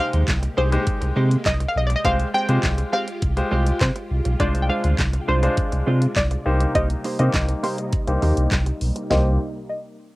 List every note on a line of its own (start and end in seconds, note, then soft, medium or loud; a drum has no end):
0.00 2.02 C3 medium
0.00 0.11 G#3 medium
0.00 0.13 G#3 medium
0.00 4.36 G#3 medium
0.00 2.02 A#3 medium
0.00 0.11 D#4 medium
0.00 0.13 D#4 medium
0.00 0.11 G4 medium
0.00 0.13 G4 medium
0.00 2.02 G4 medium
0.00 0.11 C5 medium
0.00 0.13 C5 medium
0.00 0.59 F5 loud
0.13 0.24 D#2 medium
0.13 0.26 G#3 medium
0.13 0.26 D#4 medium
0.13 0.26 G4 medium
0.13 0.25 C5 medium
0.13 closed hi-hat medium
0.28 0.48 C2 loud
0.28 kick loud
0.28 snare loud
0.28 clap loud
0.28 closed hi-hat medium
0.43 muted clean electric guitar stroke soft
0.43 closed hi-hat medium
0.57 0.78 C2 medium
0.57 0.73 G#3 medium
0.57 0.72 D#4 medium
0.57 0.65 G4 soft
0.57 0.71 G4 medium
0.57 1.49 C5 medium
0.57 0.65 C5 medium
0.57 0.71 C5 medium
0.72 1.30 G#3 medium
0.72 1.30 D#4 medium
0.72 1.30 G4 medium
0.72 1.30 C5 medium
0.72 muted clean electric guitar stroke soft
0.72 closed hi-hat medium
0.87 kick loud
0.87 closed hi-hat medium
1.01 1.12 C2 loud
1.01 muted clean electric guitar stroke medium
1.01 closed hi-hat soft
1.16 1.37 C3 loud
1.16 1.32 G#3 medium
1.16 1.30 D#4 medium
1.16 1.30 G4 medium
1.16 1.30 C5 medium
1.31 muted clean electric guitar stroke soft
1.31 closed hi-hat medium
1.46 1.66 C2 medium
1.46 1.69 D#5 loud
1.46 muted clean electric guitar stroke soft
1.46 kick loud
1.46 snare medium
1.46 clap loud
1.46 closed hi-hat medium
1.60 muted clean electric guitar stroke soft
1.60 closed hi-hat medium
1.68 1.77 F5 medium
1.75 1.95 B1 medium
1.75 1.87 D#5 medium
1.87 1.96 D5 medium
1.87 muted clean electric guitar stroke soft
1.87 closed hi-hat medium
1.96 2.05 D#5 medium
2.04 2.25 C2 loud
2.04 2.20 G#3 medium
2.04 2.26 G#3 medium
2.04 2.19 C4 medium
2.04 2.26 F4 medium
2.04 6.42 F4 medium
2.04 4.38 G4 medium
2.04 2.26 G4 medium
2.04 2.18 G4 medium
2.04 2.26 C5 medium
2.04 2.18 C5 loud
2.04 2.32 F5 loud
2.04 kick loud
2.04 closed hi-hat medium
2.19 muted clean electric guitar stroke soft
2.19 closed hi-hat soft
2.34 2.46 G#3 medium
2.34 2.46 C4 medium
2.34 2.46 G4 medium
2.34 2.47 C5 medium
2.34 2.95 G5 loud
2.49 2.59 C3 loud
2.49 2.92 G#3 medium
2.49 2.61 G#3 medium
2.49 2.61 C4 medium
2.49 2.92 F4 medium
2.49 2.92 G4 medium
2.49 2.61 G4 medium
2.49 2.61 C5 medium
2.49 2.92 C5 medium
2.49 closed hi-hat medium
2.63 2.84 C2 loud
2.63 kick loud
2.63 snare medium
2.63 clap loud
2.63 closed hi-hat medium
2.78 muted clean electric guitar stroke soft
2.78 closed hi-hat medium
2.93 3.08 G#3 medium
2.93 3.07 C4 medium
2.93 3.07 G4 medium
2.93 3.06 C5 medium
2.93 3.84 F5 loud
3.07 muted clean electric guitar stroke soft
3.07 closed hi-hat medium
3.22 3.43 C2 loud
3.22 kick loud
3.22 closed hi-hat medium
3.37 3.88 G#3 medium
3.37 3.88 F4 medium
3.37 3.88 G4 medium
3.37 3.88 C5 medium
3.37 muted clean electric guitar stroke soft
3.37 closed hi-hat soft
3.51 3.72 C2 loud
3.51 3.67 G#3 medium
3.51 3.66 C4 medium
3.51 3.66 G4 medium
3.51 3.65 C5 loud
3.66 muted clean electric guitar stroke soft
3.66 closed hi-hat medium
3.81 3.91 C3 loud
3.81 4.42 C5 medium
3.81 muted clean electric guitar stroke soft
3.81 kick loud
3.81 snare medium
3.81 clap loud
3.81 closed hi-hat medium
3.96 muted clean electric guitar stroke soft
3.96 closed hi-hat medium
4.11 4.21 C2 medium
4.25 4.35 B1 medium
4.25 muted clean electric guitar stroke soft
4.25 closed hi-hat medium
4.40 4.70 C2 loud
4.40 9.07 C3 medium
4.40 4.55 G#3 medium
4.40 4.83 G#3 medium
4.40 6.44 G#3 medium
4.40 4.83 D4 medium
4.40 6.44 D4 medium
4.40 4.54 D4 medium
4.40 4.83 F4 medium
4.40 4.54 F4 medium
4.40 4.84 C5 medium
4.40 4.53 C5 medium
4.40 4.63 D5 loud
4.40 kick loud
4.40 closed hi-hat medium
4.55 muted clean electric guitar stroke soft
4.55 closed hi-hat medium
4.62 4.69 G5 medium
4.69 4.81 G#3 medium
4.69 4.82 D4 medium
4.69 4.82 F4 medium
4.69 4.82 C5 medium
4.69 5.30 F5 loud
4.84 4.94 D2 medium
4.84 4.97 G#3 medium
4.84 4.97 D4 medium
4.84 4.96 F4 medium
4.84 4.96 C5 medium
4.84 closed hi-hat medium
4.99 5.19 C2 loud
4.99 kick loud
4.99 snare loud
4.99 clap loud
4.99 closed hi-hat medium
5.13 muted clean electric guitar stroke soft
5.13 closed hi-hat medium
5.28 5.48 C2 medium
5.28 5.44 G#3 medium
5.28 5.42 D4 loud
5.28 5.35 F4 soft
5.28 5.42 F4 loud
5.28 5.36 C5 medium
5.28 6.19 C5 medium
5.28 5.42 C5 loud
5.43 6.01 G#3 medium
5.43 6.01 D4 medium
5.43 6.01 F4 medium
5.43 6.01 C5 medium
5.43 muted clean electric guitar stroke soft
5.43 closed hi-hat medium
5.57 kick loud
5.57 closed hi-hat medium
5.72 5.82 C2 loud
5.72 muted clean electric guitar stroke soft
5.72 closed hi-hat soft
5.87 6.07 C3 medium
5.87 6.02 G#3 medium
5.87 6.01 D4 medium
5.87 6.01 F4 loud
5.87 6.00 C5 loud
6.02 muted clean electric guitar stroke medium
6.02 closed hi-hat medium
6.16 6.37 C2 loud
6.16 6.77 D5 medium
6.16 muted clean electric guitar stroke soft
6.16 kick loud
6.16 snare medium
6.16 clap loud
6.16 closed hi-hat medium
6.31 muted clean electric guitar stroke soft
6.31 closed hi-hat medium
6.46 6.66 C2 loud
6.46 9.08 G3 medium
6.46 7.05 A#3 medium
6.46 9.08 A#3 medium
6.46 7.05 D#4 medium
6.46 9.08 D#4 medium
6.46 7.05 G4 medium
6.46 7.05 C5 medium
6.60 muted clean electric guitar stroke medium
6.60 closed hi-hat medium
6.75 6.95 C2 loud
6.75 6.91 A#3 medium
6.75 6.89 D#4 medium
6.75 6.89 G4 medium
6.75 6.89 C5 medium
6.75 7.16 D#5 loud
6.75 kick loud
6.75 closed hi-hat medium
6.90 muted clean electric guitar stroke soft
6.90 closed hi-hat medium
7.04 7.17 A#3 medium
7.04 7.17 D#4 medium
7.04 7.17 G4 medium
7.04 7.17 C5 medium
7.04 open hi-hat medium
7.19 7.29 C3 medium
7.19 7.63 A#3 medium
7.19 7.32 A#3 medium
7.19 7.63 D#4 medium
7.19 7.32 D#4 medium
7.19 7.63 G4 medium
7.19 7.32 G4 medium
7.19 7.31 C5 medium
7.19 7.63 C5 medium
7.19 7.65 D#5 medium
7.19 closed hi-hat medium
7.34 7.54 C2 loud
7.34 kick loud
7.34 snare loud
7.34 clap loud
7.34 closed hi-hat medium
7.49 muted clean electric guitar stroke medium
7.49 closed hi-hat medium
7.63 7.79 A#3 medium
7.63 7.78 D#4 medium
7.63 7.77 G4 loud
7.63 8.77 C5 medium
7.63 7.77 C5 loud
7.63 open hi-hat medium
7.78 muted clean electric guitar stroke soft
7.78 closed hi-hat medium
7.93 kick loud
7.93 closed hi-hat medium
8.07 8.18 C2 medium
8.07 8.58 A#3 medium
8.07 8.58 D#4 medium
8.07 8.58 G4 medium
8.07 8.58 C5 medium
8.07 muted clean electric guitar stroke soft
8.07 closed hi-hat soft
8.22 8.32 D#2 loud
8.22 8.38 A#3 medium
8.22 8.36 D#4 medium
8.22 8.36 G4 medium
8.22 8.36 C5 medium
8.22 open hi-hat medium
8.37 8.47 C2 loud
8.37 muted clean electric guitar stroke medium
8.37 closed hi-hat medium
8.52 8.72 C2 loud
8.52 muted clean electric guitar stroke soft
8.52 kick loud
8.52 snare medium
8.52 clap loud
8.52 closed hi-hat medium
8.66 muted clean electric guitar stroke soft
8.66 closed hi-hat medium
8.81 8.91 B1 medium
8.81 open hi-hat medium
8.96 muted clean electric guitar stroke soft
8.96 closed hi-hat medium
9.10 9.38 C2 loud
9.10 9.38 C3 medium
9.10 9.38 G3 medium
9.10 9.28 A#3 medium
9.10 9.38 A#3 medium
9.10 9.38 D#4 medium
9.10 9.28 D#4 medium
9.10 9.38 G4 medium
9.10 9.29 G4 medium
9.10 9.38 C5 medium
9.10 9.29 C5 medium
9.10 9.38 D#5 medium
9.10 snare loud
9.10 floor tom loud